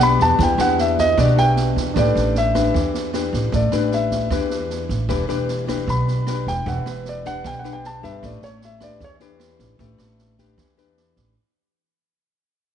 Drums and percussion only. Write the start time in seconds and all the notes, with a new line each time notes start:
0.19 kick, snare
0.39 kick, snare
0.59 cross-stick, snare
0.78 snare
0.98 kick, snare
1.18 kick, cross-stick, snare
1.37 snare
1.56 snare
1.76 kick, snare
1.96 kick, cross-stick, snare
2.16 snare
2.35 snare
2.55 kick, cross-stick, snare
2.74 kick, snare
2.94 snare
3.14 cross-stick, snare
3.33 kick, snare
3.52 kick, snare
3.72 cross-stick, snare
3.92 snare
4.11 kick, snare
4.31 kick, cross-stick, snare
4.50 snare
4.70 snare
4.89 kick, snare
5.09 kick, cross-stick, snare
5.29 snare
5.48 snare
5.68 kick, cross-stick, snare
5.88 kick, snare
6.08 snare
6.27 cross-stick, snare
6.47 kick, snare
6.66 kick, snare
6.86 cross-stick, snare
7.05 snare
7.25 kick, snare
7.44 kick, cross-stick, snare
7.64 snare
7.84 snare
8.03 kick, snare
8.23 kick, cross-stick, snare
8.42 snare
8.61 snare
8.80 kick, cross-stick, snare
9.00 kick, snare
9.20 snare
9.40 cross-stick, snare
9.59 kick, snare
9.79 kick, snare
9.98 cross-stick, snare
10.19 snare
10.38 kick, snare
10.58 kick, cross-stick, snare
10.77 snare
10.97 snare
11.16 kick, snare